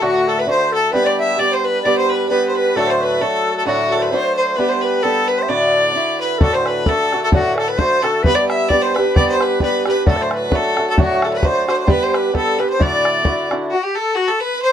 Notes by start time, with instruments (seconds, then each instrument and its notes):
0.01 steel-string acoustic guitar D2 A2 D3 A3 D4 F#4, fiddle F#4, flute F#4
0.28 flute A4, fiddle A4
0.38 flute B4, fiddle B4
0.47 steel-string acoustic guitar D3 A3 D4 F#4, flute C5, fiddle C5
0.72 flute A4, fiddle A4
0.92 steel-string acoustic guitar G3 B3 D4 G4, flute B4, fiddle B4
1.05 flute D5, fiddle D5
1.18 flute E5, fiddle E5
1.38 steel-string acoustic guitar G3 B3 D4 G4, flute D5, fiddle D5
1.52 flute C5, fiddle C5
1.63 flute B4, fiddle B4
1.82 steel-string acoustic guitar G3 B3 D4, flute D5, fiddle D5
1.86 steel-string acoustic guitar G4
1.96 flute C5, fiddle C5
2.09 flute B4, fiddle B4
2.29 steel-string acoustic guitar G3 B3 D4 G4, fiddle B4, flute B4
2.49 fiddle C5
2.55 fiddle B4, flute B4
2.76 steel-string acoustic guitar D2 A2 F#3 A3 D4 F#4, flute A4, fiddle A4
2.87 flute C5, fiddle C5
3.01 flute B4, fiddle B4
3.21 steel-string acoustic guitar F#3 A3 D4 F#4, flute A4, fiddle A4
3.56 flute A4, fiddle A4
3.65 steel-string acoustic guitar D2 A2 F#3 A3 D4 F#4, flute F#4, fiddle F#4
3.92 flute A4, fiddle A4
3.99 flute B4 C5, fiddle B4 C5
4.10 steel-string acoustic guitar F#3 A3 D4 F#4, flute C5, fiddle C5
4.36 flute C5, fiddle C5
4.56 steel-string acoustic guitar G3 B3 D4 G4, fiddle B4, flute B4
4.69 fiddle C5, flute C5
4.81 fiddle B4, flute B4
5.03 steel-string acoustic guitar G3 B3 D4 G4, flute A4, fiddle A4
5.28 flute B4, fiddle B4
5.38 fiddle C5
5.42 flute E5
5.48 steel-string acoustic guitar D2 A2 D3 D4 E4 F#4, fiddle D5, flute D5
5.94 steel-string acoustic guitar D3 D4 E4 F#4
6.20 flute B4, fiddle B4
6.38 steel-string acoustic guitar D2 A2 D3 A3 D4, flute A4, bodhran
6.42 steel-string acoustic guitar F#4, fiddle A4
6.53 flute C5, fiddle C5
6.65 flute B4, fiddle B4, bodhran
6.86 steel-string acoustic guitar D3 A3 D4 F#4, flute A4, fiddle A4, bodhran
7.12 steel-string acoustic guitar D3 A3 D4 F#4, bodhran
7.23 flute A4, fiddle A4
7.32 steel-string acoustic guitar D2 A2 D3 A3 D4 F#4, flute F#4, fiddle F#4, bodhran
7.55 flute A4 B4, bodhran
7.60 fiddle A4
7.68 fiddle B4, flute B4
7.78 steel-string acoustic guitar D3 A3 D4 F#4, fiddle C5, flute C5, bodhran
8.03 steel-string acoustic guitar D3 A3 D4 F#4, fiddle A4, flute A4, bodhran
8.23 steel-string acoustic guitar G3 B3 D4 G4, flute B4, fiddle B4, bodhran
8.35 flute D5, fiddle D5
8.48 flute E5, fiddle E5, bodhran
8.68 steel-string acoustic guitar G3 B3 D4, fiddle D5, flute D5, bodhran
8.73 steel-string acoustic guitar G4
8.82 fiddle C5, flute C5
8.95 steel-string acoustic guitar D4 G4, fiddle B4, flute B4, bodhran
8.99 steel-string acoustic guitar B3
9.16 steel-string acoustic guitar G3 B3 D4 G4, fiddle D5, flute D5, bodhran
9.29 fiddle C5
9.37 flute C5, bodhran
9.41 flute B4, fiddle B4
9.60 steel-string acoustic guitar G3 B3 D4 G4, fiddle B4, flute B4, bodhran
9.86 steel-string acoustic guitar B3 D4 G4, flute B4, fiddle B4, bodhran
10.06 steel-string acoustic guitar D2 A2 F#3 A3 D4 F#4, flute A4, fiddle A4, bodhran
10.16 flute D5
10.22 flute C5, fiddle C5
10.31 flute B4, bodhran
10.35 fiddle B4
10.48 steel-string acoustic guitar F#3 D4, flute B4, bodhran
10.53 steel-string acoustic guitar A3 F#4, fiddle A4, flute A4
10.77 steel-string acoustic guitar F#3 A3 D4 F#4, bodhran
10.90 fiddle A4, flute A4
10.98 steel-string acoustic guitar D2 A2 F#3 A3 D4 F#4, flute F#4, fiddle F#4, bodhran
11.22 fiddle A4, flute A4, bodhran
11.33 fiddle B4
11.37 flute B4
11.43 steel-string acoustic guitar F#3 A3 D4 F#4, fiddle C5, bodhran
11.48 flute C5
11.68 steel-string acoustic guitar F#3 A3 D4 F#4, fiddle C5, bodhran
11.73 fiddle C5
11.79 fiddle C5, flute C5
11.86 steel-string acoustic guitar G3 B3 D4 G4, fiddle B4 C5, bodhran
11.91 flute B4
12.03 fiddle C5, flute C5
12.14 fiddle B4, flute B4, bodhran
12.33 steel-string acoustic guitar G3 B3 D4 G4, flute A4, fiddle A4, bodhran
12.59 steel-string acoustic guitar B3 D4 G4, fiddle B4, flute B4, bodhran
12.70 fiddle C5, flute C5
12.79 steel-string acoustic guitar D2 A2 D3 D4 E4 F#4, fiddle D5, bodhran
12.84 flute D5
13.05 bodhran
13.24 steel-string acoustic guitar D3 D4 E4 F#4, bodhran
13.51 steel-string acoustic guitar D3 D4 E4 F#4, bodhran
13.70 fiddle F#4, flute F#4
13.83 fiddle G4, flute G4
13.95 fiddle A4, flute A4
14.16 fiddle F#4, flute F#4
14.28 fiddle A4, flute A4
14.40 fiddle B4, flute B4
14.62 fiddle C5, flute C5